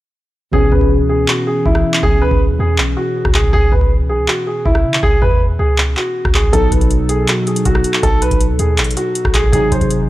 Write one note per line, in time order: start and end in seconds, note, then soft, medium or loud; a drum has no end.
0.52 0.71 C#2 loud
0.52 3.48 B2 medium
0.52 3.49 E3 medium
0.52 3.50 C#4 medium
0.52 0.71 G#4 loud
0.52 3.50 G#4 medium
0.52 kick loud
0.72 1.26 C#2 loud
0.72 0.89 B4 medium
0.72 kick medium
0.81 kick medium
1.09 1.27 G#4 medium
1.28 1.46 F#4 medium
1.28 clap loud
1.47 1.64 G#4 medium
1.65 1.84 C#2 loud
1.65 2.01 E4 medium
1.65 kick medium
1.75 cross-stick loud
1.94 clap medium
2.03 2.30 C#2 loud
2.03 2.20 G#4 loud
2.03 kick loud
2.22 2.39 B4 loud
2.31 2.51 C#2 loud
2.31 kick medium
2.50 2.59 D#2 loud
2.59 2.80 E2 loud
2.59 2.77 G#4 medium
2.78 2.96 B1 loud
2.78 clap loud
2.97 3.32 F#4 medium
3.25 3.52 C#2 loud
3.25 kick loud
3.25 cross-stick medium
3.34 3.52 G#4 medium
3.34 kick medium
3.34 clap loud
3.44 kick medium
3.53 3.71 C#2 loud
3.53 3.71 G#4 loud
3.53 kick loud
3.72 4.11 C#2 loud
3.72 3.89 B4 medium
3.72 kick medium
3.81 kick medium
4.09 4.20 B1 loud
4.09 4.27 G#4 medium
4.19 4.28 C#2 loud
4.28 4.45 F#4 medium
4.28 clap loud
4.47 4.64 G#4 medium
4.65 4.86 C#2 loud
4.65 5.01 E4 medium
4.65 kick medium
4.75 cross-stick medium
4.84 5.02 C#3 loud
4.94 clap medium
5.03 5.21 C#2 loud
5.03 5.20 G#4 loud
5.03 kick loud
5.22 5.58 E2 loud
5.22 5.39 B4 medium
5.22 kick medium
5.31 kick medium
5.59 5.95 C#2 loud
5.59 5.77 G#4 medium
5.78 clap loud
5.97 6.32 F#4 medium
5.97 clap medium
6.25 6.52 C#2 loud
6.25 kick loud
6.25 cross-stick medium
6.34 6.52 G#4 medium
6.34 kick medium
6.34 clap loud
6.44 kick medium
6.52 6.71 B1 loud
6.52 9.48 B2 medium
6.52 9.49 F#3 medium
6.52 9.50 D#4 medium
6.52 6.70 A4 loud
6.52 9.50 A4 medium
6.52 kick loud
6.52 closed hi-hat medium
6.72 7.26 B1 loud
6.72 6.89 B4 medium
6.72 kick medium
6.72 closed hi-hat medium
6.81 kick loud
6.81 closed hi-hat soft
6.91 closed hi-hat medium
7.09 7.27 G#4 medium
7.09 closed hi-hat medium
7.28 7.46 F#4 medium
7.28 clap loud
7.28 closed hi-hat medium
7.47 7.64 G#4 medium
7.47 closed hi-hat soft
7.56 closed hi-hat medium
7.65 7.84 B1 loud
7.65 8.01 F#4 medium
7.65 kick medium
7.65 closed hi-hat medium
7.75 cross-stick loud
7.84 closed hi-hat medium
7.94 clap medium
8.03 8.30 B1 loud
8.03 8.21 A4 loud
8.03 kick loud
8.03 closed hi-hat medium
8.22 8.39 B4 medium
8.22 closed hi-hat medium
8.31 8.52 B1 loud
8.31 kick loud
8.31 closed hi-hat soft
8.41 closed hi-hat medium
8.50 8.59 C#2 loud
8.59 8.80 D#2 loud
8.59 8.77 G#4 medium
8.59 closed hi-hat medium
8.78 8.96 A1 loud
8.78 clap loud
8.78 closed hi-hat medium
8.84 closed hi-hat medium
8.91 closed hi-hat medium
8.97 9.32 F#4 medium
8.97 closed hi-hat medium
9.15 closed hi-hat medium
9.25 9.52 B1 loud
9.25 kick loud
9.25 cross-stick loud
9.34 9.51 G#4 medium
9.34 kick medium
9.34 clap loud
9.34 closed hi-hat medium
9.44 kick medium
9.52 9.71 G#1 loud
9.52 10.09 C3 medium
9.52 10.09 F#3 medium
9.52 10.09 D#4 medium
9.52 9.70 G#4 loud
9.52 10.09 G#4 medium
9.52 kick loud
9.52 closed hi-hat medium
9.72 9.81 G#1 loud
9.72 9.89 C5 medium
9.72 kick medium
9.72 closed hi-hat medium
9.81 10.09 G#1 loud
9.81 kick loud
9.81 closed hi-hat soft
9.90 closed hi-hat medium